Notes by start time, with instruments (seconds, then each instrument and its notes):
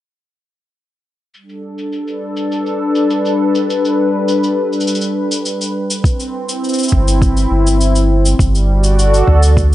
1.34 analog synth pad G3, cabasa
1.42 analog synth pad D4 A4
1.49 cabasa
1.78 cabasa
1.92 cabasa
1.97 analog synth pad B4
2.07 cabasa
2.37 cabasa
2.52 cabasa
2.66 cabasa
2.95 cabasa
3.10 cabasa
3.25 cabasa
3.55 cabasa
3.70 cabasa
3.85 cabasa
4.28 cabasa
4.43 cabasa
4.73 cabasa
4.80 cabasa
4.87 cabasa
4.95 cabasa
5.01 cabasa
5.31 cabasa
5.46 cabasa
5.61 cabasa
5.90 cabasa
6.04 analog synth pad C4, kick, cabasa
6.20 cabasa
6.35 analog synth pad E4
6.49 cabasa
6.64 cabasa
6.69 cabasa
6.73 cabasa
6.78 cabasa
6.83 cabasa
6.88 cabasa
6.92 sub bass G1, kick
7.08 cabasa
7.22 kick, cabasa
7.37 cabasa
7.51 sub bass G1
7.67 cabasa
7.81 cabasa
7.95 cabasa
8.25 cabasa
8.39 sub bass G1, analog synth pad G3, kick, cabasa
8.55 cabasa
8.61 analog synth pad F#4 D5
8.84 cabasa
8.90 analog synth pad A4
8.99 cabasa
9.14 cabasa
9.28 sub bass D2, kick
9.43 cabasa
9.57 kick, cabasa